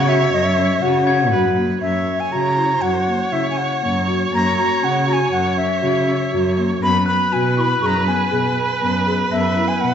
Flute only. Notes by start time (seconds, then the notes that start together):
0.09 E5
0.33 D#5
0.45 E5
0.82 F#5
1.81 E5
2.20 G#5
2.32 A#5
2.81 F#5
3.33 E5
3.51 G#5
3.58 F#5
4.35 A#5
4.58 A#5
4.84 F#5
5.08 A#5
5.13 G#5
5.32 F#5
5.57 E5
6.83 B5
7.08 B5
7.33 G#5
7.58 B5 C#6
7.82 C#6
7.86 A#5
8.07 G#5
9.32 E5
9.68 G#5
9.81 F#5